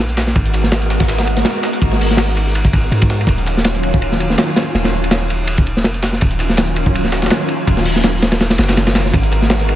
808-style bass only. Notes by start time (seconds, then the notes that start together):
0.00 A#1
0.36 G#1
1.82 G#1
2.92 G#2
3.27 D#1
4.75 D#1
5.84 F1
6.22 D#1
7.67 D#1
8.59 F#1
9.14 G#1